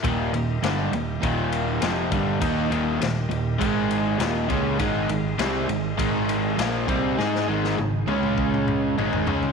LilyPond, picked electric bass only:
\new Staff \with { instrumentName = "Picked electric bass" } { \clef bass \time 4/4 \key ees \major \tempo 4 = 101 ees,,8 ees,,8 g,,8 ees,,8 ees,,4 f,,8 g,,8 | ees,8 ees,,8 ees,,8 ees,,8 aes,,4 ees,,8 des,8 | aes,,8 aes,,8 c,8 aes,,8 aes,,4 bes,,8 c,8 | aes,8 aes,,8 aes,,8 des,4. aes,,8 des,8 | }